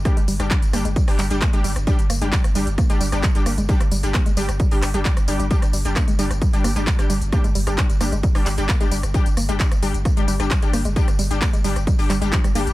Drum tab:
HH |xxoxxxoxxooxxxox|xxoxxxoxxxoxxxox|xxoxxxoxxooxxxox|xxoxxxoxxxoxxxox|
TB |xxxxxxxxxxxxxxxx|xxxxxxxxxxxxxxxx|xxxxxxxxxxxxxxxx|xxxxxxxxxxxxxxxx|
CP |----x-----x-x---|----x-------x---|----x-----x-x---|----x-------x---|
SD |r--r--r--r--r--r|--r--r--r--r--r-|-r--r--r--r--r--|-r--r--r--r--r--|
BD |o---o---o---o---|o---o---o---o---|o---o---o---o---|o---o---o---o---|

HH |xxoxxxoxxooxxxox|xxoxxxoxxxoxxxox|xxoxxxoxxooxxxox|
TB |xxxxxxxxxxxxxxxx|xxxxxxxxxxxxxxxx|xxxxxxxxxxxxxxxx|
CP |----x-----x-x---|----x-------x---|----x-----x-x---|
SD |r--r--r--r--r--r|--r--r--r--r--r-|-r--r--r--r--r--|
BD |o---o---o---o---|o---o---o---o---|o---o---o---o---|